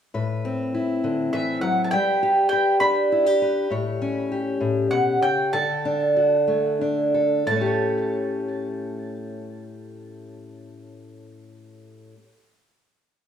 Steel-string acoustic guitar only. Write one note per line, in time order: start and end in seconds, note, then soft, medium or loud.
0.14 1.93 A2 soft
0.14 1.89 B4 medium
0.45 1.93 C4 medium
0.74 1.93 E4 soft
1.04 1.33 D3 soft
1.34 1.62 E3 soft
1.63 1.93 F#3 soft
1.93 5.53 G3 medium
1.93 2.51 B4 medium
2.23 3.12 G4 medium
2.53 3.41 B4 soft
2.81 3.67 D4 soft
3.12 3.26 E4 soft
3.26 3.71 G4 soft
3.42 3.68 B4 medium
3.70 4.59 A2 medium
3.70 5.49 C#5 medium
4.02 5.49 C#4 soft
4.32 5.49 G4 soft
4.60 4.91 A2 soft
4.91 5.21 B2 soft
5.21 5.53 C#3 soft
5.53 7.47 D3 medium
5.53 7.13 A4 medium
5.85 6.80 D4 medium
6.16 7.43 F#4 soft
6.48 7.42 A3 soft
6.81 7.43 D4 soft
7.14 7.65 A4 soft
7.46 12.14 A2 soft
7.51 12.18 A3 medium
7.56 12.23 C#4 soft
7.61 12.28 G4 soft
7.66 12.33 C#5 soft